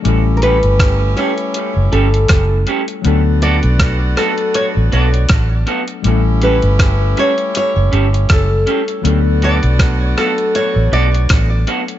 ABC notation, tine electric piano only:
X:1
M:4/4
L:1/8
Q:"Swing 16ths" 1/4=80
K:D
V:1 name="Tine electric piano"
[G,A,CEA]8 | [F,A,B,DA]8 | [G,A,B,CEA]8 | [F,A,B,DA]8 |]